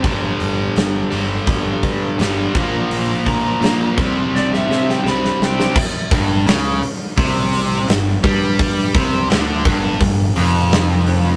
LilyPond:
<<
  \new Staff \with { instrumentName = "Electric slide guitar" } { \time 4/4 \key c \major \tempo 4 = 84 r1 | r8 bes''4 r8 d''16 e''8 g''16 b''8 g''8 | r1 | r1 | }
  \new Staff \with { instrumentName = "Overdriven electric guitar" } { \clef bass \time 4/4 \key c \major <g, d g>4. <g, d g>4. <g, d g>8 <bes, f bes>8~ | <bes, f bes>4 <bes, f bes>8 <c g c'>4. <c g c'>4 | r8 g,8 cis8 r8 c4 g,8 g8~ | g8 c8 d8 g,8 g,8 f,4. | }
  \new Staff \with { instrumentName = "Picked electric bass" } { \clef bass \time 4/4 \key c \major g,,8 g,,8 g,,8 g,,8 g,,8 g,8 g,,8 bes,,8 | bes,,8 bes,,8 bes,,8 c,8 c,8 c8 c,8 c,8 | r8 g,,8 cis,8 r8 c,4 g,,8 g,8~ | g,8 c,8 d,8 g,,8 g,,8 f,,4. | }
  \new DrumStaff \with { instrumentName = "Drums" } \drummode { \time 4/4 <hho bd>8 hho8 <hho sn>8 hho8 <hho bd>8 <hho bd>8 <hho sn>8 <hho bd>8 | hho8 <hho bd>8 <hho sn>8 <hho bd>8 sn16 sn16 sn16 sn16 sn16 sn16 sn16 sn16 | <cymc bd>8 <hho bd>8 <hho sn>8 hho8 <hho bd>8 hho8 <hho sn>8 <hho bd>8 | <hho bd>8 <hho bd>8 <hho sn>8 <hho bd>8 <hho bd>8 hho8 <hho sn>8 hho8 | }
>>